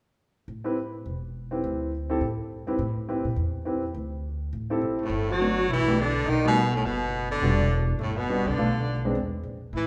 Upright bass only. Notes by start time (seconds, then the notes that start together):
0.48 A1
1.06 E1
1.64 D2
2.21 A2
2.67 G2
2.79 A2
3.25 A#2
3.36 E2
3.95 D2
4.53 A1
4.82 G#1
5.10 G1
5.68 B1
6.26 B1
6.84 F#1
7.41 E1
7.99 G1
8.45 C2
8.57 B1
9.15 E2
9.43 A#1
9.73 A1